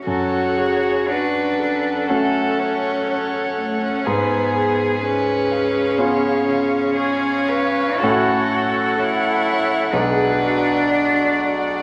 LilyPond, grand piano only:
\new Staff \with { instrumentName = "Grand piano" } { \time 4/4 \key fis \minor \tempo 4 = 61 fis,2 <a cis' fis'>2 | gis,2 <b cis' eis'>2 | <a, a cis' fis'>2 <b,, gis fis' gis'>2 | }